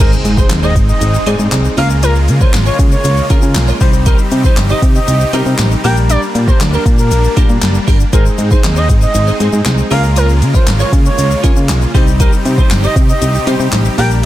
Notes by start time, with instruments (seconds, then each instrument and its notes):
0.00 fm bass G#1, grand piano G#3 C4 D#4 G#4 C5, supersaw synth G#3 C4 D#4, clean electric guitar D#4 G#4 C5, analog synth lead A#4, kick, impact, shaker
0.12 muted clean electric guitar stroke, shaker
0.25 fm bass G#2, muted clean electric guitar stroke, closed hi-hat, shaker
0.37 clean electric guitar D#4 G#4 C5, analog synth lead C5, kick, shaker
0.50 fm bass D#2, muted clean electric guitar stroke, snare, clap, closed hi-hat, shaker
0.63 clean electric guitar D#4 G#4 C5, analog synth lead D#5, shaker
0.76 fm bass G#2, muted clean electric guitar stroke, kick, closed hi-hat, shaker
0.89 analog synth lead D#5, muted clean electric guitar stroke, shaker
1.01 fm bass G#1, muted clean electric guitar stroke, closed hi-hat, shaker
1.14 muted clean electric guitar stroke, shaker
1.26 fm bass G#2, grand piano G#3 C4 D#4 G#4 D5, clean electric guitar D#4 G#4 C5, closed hi-hat, shaker
1.39 fm bass G#2, muted clean electric guitar stroke, shaker
1.52 fm bass C2, snare, clap, closed hi-hat, shaker
1.65 muted clean electric guitar stroke, shaker
1.77 fm bass C#2, supersaw synth C#3 G#3 A#3 F4, grand piano A#3 C#4 F4 G#4 A#4, clean electric guitar F4 A#4 C#5, analog synth lead F5, open hi-hat, shaker
1.90 muted clean electric guitar stroke, shaker
2.03 clean electric guitar F4 A#4 C#5, analog synth lead A#4, closed hi-hat, shaker
2.15 muted clean electric guitar stroke, shaker
2.28 fm bass C#3, muted clean electric guitar stroke, closed hi-hat, shaker
2.41 clean electric guitar F4 A#4 C#5, analog synth lead C5, kick, shaker
2.54 fm bass G#1, muted clean electric guitar stroke, snare, clap, closed hi-hat, shaker
2.66 clean electric guitar F4 A#4 C#5, analog synth lead C#5, shaker
2.79 fm bass C#3, muted clean electric guitar stroke, kick, closed hi-hat, shaker
2.92 analog synth lead C#5, muted clean electric guitar stroke, shaker
3.04 fm bass C#2, muted clean electric guitar stroke, closed hi-hat, shaker
3.17 muted clean electric guitar stroke, shaker
3.30 fm bass C#3, grand piano A#3 C#4 F4 G#4 A#4, clean electric guitar F4 A#4 C#5, kick, closed hi-hat, shaker
3.42 fm bass C#3, muted clean electric guitar stroke, shaker
3.55 fm bass B1, muted clean electric guitar stroke, snare, clap, closed hi-hat, shaker
3.68 clean electric guitar F4 A#4 C#5, shaker
3.80 fm bass C2, supersaw synth C3 C4 D#4 G4, grand piano G3 C4 D#4 G4 C5, clean electric guitar D#4 G4 C5, kick, open hi-hat, shaker
3.93 muted clean electric guitar stroke, shaker
4.06 clean electric guitar D#4 G4 C5, analog synth lead A#4, kick, closed hi-hat, shaker
4.18 muted clean electric guitar stroke, shaker
4.31 fm bass C3, muted clean electric guitar stroke, closed hi-hat, shaker
4.44 clean electric guitar D#4 G4 C5, analog synth lead C5, kick, shaker
4.57 fm bass G1, muted clean electric guitar stroke, snare, clap, closed hi-hat, shaker
4.69 clean electric guitar D#4 G4 C5, analog synth lead D#5, shaker
4.82 fm bass C3, muted clean electric guitar stroke, kick, closed hi-hat, shaker
4.95 analog synth lead D#5, muted clean electric guitar stroke, shaker
5.08 fm bass C2, muted clean electric guitar stroke, closed hi-hat, shaker
5.21 muted clean electric guitar stroke, shaker
5.33 fm bass C3, grand piano G3 C4 D#4 G4 A#4, clean electric guitar D#4 G4 C5, closed hi-hat, shaker
5.46 fm bass C3, muted clean electric guitar stroke, shaker
5.58 fm bass A1, snare, clap, closed hi-hat, shaker
5.71 muted clean electric guitar stroke, shaker
5.84 fm bass A#1, grand piano G3 A#3 D4 G4 A#4, supersaw synth G3 A#3 D4, clean electric guitar D4 G4 A#4, analog synth lead G5, open hi-hat, shaker
5.97 muted clean electric guitar stroke, shaker
6.09 clean electric guitar D4 G4 A#4, analog synth lead D5, closed hi-hat, shaker
6.22 muted clean electric guitar stroke, shaker
6.35 fm bass A#2, muted clean electric guitar stroke, closed hi-hat, shaker
6.47 clean electric guitar D4 G4 A#4, analog synth lead C5, kick, shaker
6.60 fm bass D2, muted clean electric guitar stroke, snare, clap, closed hi-hat, shaker
6.73 clean electric guitar D4 G4 A#4, analog synth lead A#4, shaker
6.86 fm bass A#2, muted clean electric guitar stroke, kick, closed hi-hat, shaker
6.98 analog synth lead A#4, muted clean electric guitar stroke, shaker
7.11 fm bass A#1, muted clean electric guitar stroke, closed hi-hat, shaker
7.24 muted clean electric guitar stroke, shaker
7.36 fm bass A#2, grand piano G3 A#3 D4 G4 A#4, clean electric guitar D4 G4 A#4, kick, closed hi-hat, shaker
7.49 fm bass A#2, muted clean electric guitar stroke, shaker
7.62 fm bass F#1, snare, clap, closed hi-hat, shaker
7.75 muted clean electric guitar stroke, shaker
7.87 fm bass G1, clean electric guitar D4 G4 A#4, kick, open hi-hat, shaker
8.00 muted clean electric guitar stroke, shaker
8.13 fm bass G#1, grand piano G#3 C4 D#4 G#4 C5, supersaw synth G#3 C4 D#4, clean electric guitar D#4 G#4 C5, analog synth lead A#4, kick, closed hi-hat, shaker
8.25 muted clean electric guitar stroke, shaker
8.38 fm bass G#2, muted clean electric guitar stroke, closed hi-hat, shaker
8.51 clean electric guitar D#4 G#4 C5, analog synth lead C5, kick, shaker
8.64 fm bass D#2, muted clean electric guitar stroke, snare, clap, closed hi-hat, shaker
8.76 clean electric guitar D#4 G#4 C5, analog synth lead D#5, shaker
8.89 fm bass G#2, muted clean electric guitar stroke, kick, closed hi-hat, shaker
9.02 analog synth lead D#5, muted clean electric guitar stroke, shaker
9.14 fm bass G#1, muted clean electric guitar stroke, closed hi-hat, shaker
9.27 clean electric guitar D#4 G#4 C5, shaker
9.40 fm bass G#2, grand piano G#3 C4 D#4 G#4 C5, clean electric guitar D#4 G#4 C5, closed hi-hat, shaker
9.53 fm bass G#2, muted clean electric guitar stroke, shaker
9.65 fm bass C2, snare, clap, closed hi-hat, shaker
9.78 muted clean electric guitar stroke, shaker
9.90 fm bass C#2, supersaw synth C#3 G#3 A#3 F4, grand piano A#3 C#4 F4 G#4 A#4, clean electric guitar F4 A#4 C#5, analog synth lead F5, open hi-hat, shaker
10.03 muted clean electric guitar stroke, shaker
10.16 clean electric guitar F4 A#4 C#5, analog synth lead A#4, closed hi-hat, shaker
10.29 muted clean electric guitar stroke, shaker
10.41 fm bass C#3, muted clean electric guitar stroke, closed hi-hat, shaker
10.54 clean electric guitar F4 A#4 C#5, analog synth lead C5, kick, shaker
10.67 fm bass G#1, muted clean electric guitar stroke, snare, clap, closed hi-hat, shaker
10.79 clean electric guitar F4 A#4 C#5, analog synth lead C#5, shaker
10.92 fm bass C#3, muted clean electric guitar stroke, kick, closed hi-hat, shaker
11.05 analog synth lead C#5, muted clean electric guitar stroke, shaker
11.18 fm bass C#2, muted clean electric guitar stroke, closed hi-hat, shaker
11.30 muted clean electric guitar stroke, shaker
11.43 fm bass C#3, grand piano A#3 C#4 F4 G#4 C#5, clean electric guitar F4 A#4 C#5, kick, closed hi-hat, shaker
11.56 fm bass C#3, muted clean electric guitar stroke, shaker
11.69 fm bass B1, snare, clap, closed hi-hat, shaker
11.82 muted clean electric guitar stroke, shaker
11.94 fm bass C2, supersaw synth C3 C4 D#4 G4, grand piano G3 C4 D#4 G4 C5, clean electric guitar D#4 G4 C5, kick, open hi-hat, shaker
12.07 muted clean electric guitar stroke, shaker
12.20 clean electric guitar D#4 G4 C5, analog synth lead A#4, kick, closed hi-hat, shaker
12.32 muted clean electric guitar stroke, shaker
12.45 fm bass C3, muted clean electric guitar stroke, closed hi-hat, shaker
12.58 clean electric guitar D#4 G4 C5, analog synth lead C5, kick, shaker
12.71 fm bass G1, muted clean electric guitar stroke, snare, clap, closed hi-hat, shaker
12.83 clean electric guitar D#4 G4 C5, analog synth lead D#5, shaker
12.96 fm bass C3, muted clean electric guitar stroke, kick, closed hi-hat, shaker
13.09 analog synth lead D#5, muted clean electric guitar stroke, shaker
13.22 fm bass C2, muted clean electric guitar stroke, closed hi-hat, shaker
13.34 muted clean electric guitar stroke, shaker
13.47 fm bass C3, grand piano G3 C4 D#4 G4 C5, clean electric guitar D#4 G4 C5, closed hi-hat, shaker
13.60 fm bass C3, muted clean electric guitar stroke, shaker
13.72 fm bass A1, snare, clap, closed hi-hat, shaker
13.85 muted clean electric guitar stroke, shaker
13.98 fm bass A#1, grand piano G3 A#3 D4 G4 A#4, supersaw synth A#3 D4, clean electric guitar D4 G4 A#4, analog synth lead G5, open hi-hat, shaker
14.11 muted clean electric guitar stroke, shaker